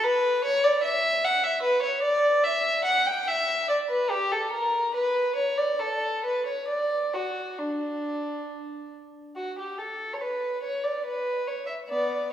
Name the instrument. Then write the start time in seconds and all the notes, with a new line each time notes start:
violin
0.04 B4
0.44 C#5
0.64 D5
0.83 E5
1.24 F#5
1.44 E5
1.62 B4
1.82 C#5
2.02 D5
2.44 E5
2.84 F#5
3.06 G5
3.27 E5
3.69 D5
3.89 B4
4.10 G4
4.32 A4
4.52 A#4
4.94 B4
5.36 C#5
5.57 D5
5.79 A4
6.24 B4
6.46 C#5
6.68 D5
7.13 F#4
7.58 D4
9.36 F#4
9.59 G4
9.78 A4
10.14 C#5
10.21 B4
10.63 C#5
10.83 D5
11.05 B4
11.47 C#5
11.66 E5
11.89 B3 D5